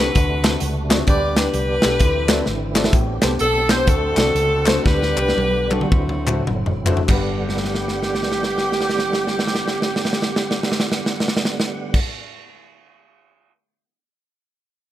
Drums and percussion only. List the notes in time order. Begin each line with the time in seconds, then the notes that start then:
0.15 kick, closed hi-hat
0.44 snare, clap, closed hi-hat
0.60 closed hi-hat
0.90 snare, clap, closed hi-hat
1.07 kick, closed hi-hat
1.36 snare, clap, closed hi-hat
1.54 closed hi-hat
1.82 snare, clap, closed hi-hat
2.00 kick, closed hi-hat
2.29 snare, clap, closed hi-hat
2.46 snare
2.75 snare, clap
2.84 snare
2.93 kick, closed hi-hat
3.22 snare, clap, closed hi-hat
3.39 closed hi-hat
3.69 snare, clap, closed hi-hat
3.87 kick, closed hi-hat
4.17 snare, clap, closed hi-hat
4.36 closed hi-hat
4.66 snare, clap, closed hi-hat
4.86 kick, snare
5.02 snare
5.17 clap
5.28 snare
5.38 high tom
5.71 clap, high tom
5.81 mid tom
5.92 kick
6.09 mid tom
6.27 clap, mid tom
6.47 mid tom
6.66 floor tom
6.86 clap, floor tom
6.97 floor tom
7.09 kick, clap, crash
7.49 snare
7.57 snare
7.65 snare
7.75 snare
7.88 snare
8.03 snare
8.15 snare
8.23 snare
8.32 snare
8.43 snare
8.58 snare
8.72 snare
8.81 snare
8.89 snare
8.99 snare
9.13 snare
9.27 snare
9.39 snare
9.47 snare
9.55 snare
9.68 snare
9.82 snare
9.96 snare
10.05 snare
10.13 snare
10.22 snare
10.36 snare
10.51 snare
10.63 snare
10.72 snare
10.80 snare
10.92 snare
11.06 snare
11.20 snare
11.28 snare
11.37 snare
11.45 snare
11.60 snare
11.94 kick, crash